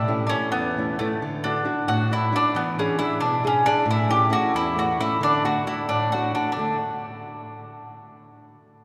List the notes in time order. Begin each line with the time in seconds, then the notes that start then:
Already playing: A2 E4
0.08 A3 C#4 E4
0.27 A3 C#4 D4
0.31 C#4 E4
0.52 E2 B3
0.78 A3 C#4 E4
0.99 A3 C#4 E4
1.22 D3
1.44 D4 E4 F#4
1.64 D4 E4 F#4
1.88 A2 F#4
2.11 D4 E4 F#4
2.32 D4 E4 F#4
2.55 E3 B3
2.78 C#4 D4 E4 G#4
2.99 D4 E4 G#4
3.20 B2 D4
3.44 C#4 D4 E4 G#4
3.66 D4 E4 G#4
3.86 A2
3.91 E4
4.08 A3 C#4 E4 G4
4.29 A3 C#4 E4 F#4
4.54 E2 E4
4.76 A3 C#4 E4 F#4
5.00 A3 C#4 E4
5.21 D3 D4
5.44 A3 D4 F#4
5.67 A3 D4 E4 F#4
5.89 A2 D4
6.12 A3 D4 F#4
6.35 A3 D4 F#4
6.52 D4
6.57 D3 A3